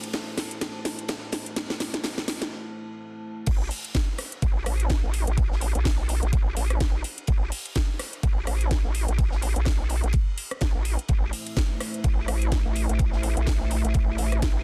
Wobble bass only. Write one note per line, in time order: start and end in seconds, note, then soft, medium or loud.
3.47 3.69 A1 loud
4.42 4.65 A1 loud
4.66 5.01 A1 loud
5.04 5.25 A1 loud
5.27 5.73 A1 loud
5.75 6.21 A#1 loud
6.23 6.31 A1 loud
6.33 6.55 A1 medium
6.57 6.79 A1 medium
6.80 7.03 A1 loud
7.28 7.50 A1 loud
8.23 8.45 A1 medium
8.47 8.82 A1 loud
8.85 9.06 A1 loud
9.08 9.54 A1 loud
9.56 10.01 A#1 loud
10.04 10.12 A1 medium
10.61 10.73 A1 loud
10.75 10.97 A1 loud
11.09 11.31 A1 loud
12.04 12.26 A1 loud
12.28 12.63 A1 loud
12.65 12.87 A1 loud
12.89 13.35 A1 loud
13.37 13.82 A#1 loud
13.85 13.93 A1 loud
13.95 14.17 A1 loud
14.19 14.41 A1 loud
14.42 14.64 A1 loud